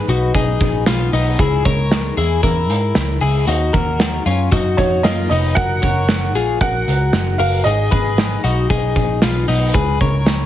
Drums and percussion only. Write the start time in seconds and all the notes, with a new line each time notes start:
0.09 closed hi-hat
0.35 kick, closed hi-hat
0.61 kick, closed hi-hat
0.86 snare, closed hi-hat
1.13 open hi-hat
1.39 kick, closed hi-hat
1.65 kick, closed hi-hat
1.92 snare, closed hi-hat
2.18 closed hi-hat
2.43 kick, closed hi-hat
2.70 closed hi-hat
2.95 snare, closed hi-hat
3.22 open hi-hat
3.48 closed hi-hat
3.74 kick, closed hi-hat
4.00 snare, closed hi-hat
4.27 closed hi-hat
4.52 kick, closed hi-hat
4.78 kick, closed hi-hat
5.05 snare, closed hi-hat
5.31 open hi-hat
5.57 kick, closed hi-hat
5.83 kick, closed hi-hat
6.09 snare, closed hi-hat
6.35 closed hi-hat
6.61 kick, closed hi-hat
6.88 closed hi-hat
7.13 snare, closed hi-hat
7.40 open hi-hat
7.66 closed hi-hat
7.92 kick, closed hi-hat
8.18 snare, closed hi-hat
8.44 closed hi-hat
8.70 kick, closed hi-hat
8.96 kick, closed hi-hat
9.22 snare, closed hi-hat
9.48 open hi-hat
9.74 kick, closed hi-hat
10.00 kick, closed hi-hat
10.26 snare, closed hi-hat